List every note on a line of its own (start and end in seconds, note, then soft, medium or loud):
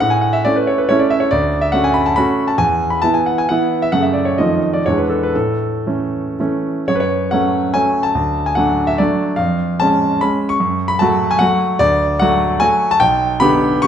0.00 0.43 A2 medium
0.00 0.11 F#5 medium
0.10 0.21 G#5 medium
0.21 0.33 F#5 medium
0.33 0.44 E5 medium
0.45 0.85 A3 soft
0.45 0.85 C#4 soft
0.45 0.85 E4 soft
0.45 0.56 D5 medium
0.56 0.67 B4 medium
0.67 0.78 C#5 medium
0.78 0.88 B4 medium
0.89 1.27 A3 soft
0.89 1.27 C#4 soft
0.89 1.28 E4 medium
0.89 0.99 C#5 medium
0.99 1.09 D5 medium
1.10 1.20 E5 medium
1.20 1.30 C#5 medium
1.31 1.73 D2 medium
1.31 1.62 D5 medium
1.61 1.73 E5 medium
1.72 2.12 A3 soft
1.72 2.13 C#4 soft
1.72 2.13 F#4 soft
1.72 1.83 F#5 medium
1.84 1.95 G#5 medium
1.94 2.05 B5 medium
2.06 2.16 A5 medium
2.16 2.54 A3 soft
2.16 2.55 C#4 soft
2.16 2.55 F#4 medium
2.16 2.48 B5 medium
2.48 2.58 A5 medium
2.58 3.01 E2 medium
2.58 2.91 G#5 medium
2.90 3.02 B5 medium
3.02 3.45 E3 soft
3.02 3.45 B3 soft
3.02 3.45 E4 soft
3.02 3.14 A5 medium
3.14 3.26 G#5 medium
3.26 3.37 F#5 medium
3.38 3.49 G#5 medium
3.49 3.88 E3 soft
3.49 3.88 B3 soft
3.49 3.89 E4 soft
3.49 3.81 F#5 medium
3.82 3.92 E5 medium
3.92 4.36 F#2 soft
3.92 4.33 C#3 soft
3.92 4.34 A3 soft
3.92 4.34 A4 soft
3.92 4.02 F#5 medium
4.03 4.13 E5 soft
4.13 4.25 D5 medium
4.25 4.37 C#5 soft
4.38 4.85 F2 soft
4.38 4.82 D#3 soft
4.38 4.82 A3 soft
4.38 4.83 F4 soft
4.38 4.74 D#5 medium
4.73 4.85 D5 medium
4.86 5.34 E2 soft
4.86 5.31 E3 soft
4.86 5.31 G#3 soft
4.86 5.31 D4 soft
4.86 4.97 C#5 medium
4.98 5.09 B4 soft
5.10 5.22 A4 soft
5.23 5.35 B4 medium
5.35 5.85 A2 soft
5.35 6.39 A4 medium
5.87 6.35 E3 soft
5.87 6.35 A3 soft
5.87 6.35 C#4 soft
6.40 6.85 E3 soft
6.40 6.85 A3 soft
6.40 6.85 C#4 soft
6.88 7.31 F#2 soft
6.88 6.95 C#5 medium
6.96 7.02 B4 medium
7.00 7.31 C#5 medium
7.31 7.70 F#3 soft
7.31 7.70 A3 soft
7.31 7.71 C#4 soft
7.31 7.74 F#5 medium
7.74 8.11 F#3 soft
7.74 8.11 A3 soft
7.74 8.11 C#4 soft
7.74 8.04 G#5 medium
8.03 8.46 A5 medium
8.15 8.56 D2 soft
8.46 8.57 G#5 medium
8.55 8.95 F#3 soft
8.55 8.95 A3 soft
8.55 8.95 D4 soft
8.55 8.88 F#5 medium
8.87 8.98 E5 medium
8.98 9.35 F#3 soft
8.98 9.35 A3 soft
8.98 9.35 D4 soft
8.98 9.38 D5 medium
9.36 9.79 F2 soft
9.36 9.79 F5 medium
9.80 10.18 G#3 soft
9.80 10.18 C#4 soft
9.80 10.21 A5 medium
10.21 10.56 G#3 soft
10.21 10.56 C#4 soft
10.21 10.50 B5 medium
10.49 10.89 C#6 medium
10.60 10.99 F#2 medium
10.88 10.99 B5 medium
10.99 11.37 F#3 soft
10.99 11.37 A3 soft
10.99 11.37 F#4 medium
10.99 11.30 A5 medium
11.31 11.40 G#5 medium
11.39 11.75 F#3 soft
11.39 11.76 A3 soft
11.39 11.76 F#4 medium
11.39 11.78 F#5 medium
11.79 12.19 D2 medium
11.79 12.20 D5 medium
12.19 12.58 F#3 medium
12.19 12.58 A3 medium
12.19 12.58 F#4 medium
12.19 12.61 F#5 medium
12.60 12.96 F#3 soft
12.60 12.96 A3 soft
12.60 12.97 F#4 soft
12.60 12.90 G#5 medium
12.91 13.00 A5 medium
13.00 13.40 B1 medium
13.00 13.41 G5 loud
13.40 13.79 D3 medium
13.40 13.79 B3 medium
13.40 13.79 G4 medium
13.40 13.82 B5 loud
13.82 13.87 D3 soft
13.82 13.87 B3 soft
13.82 13.87 G4 medium
13.82 13.87 C#6 loud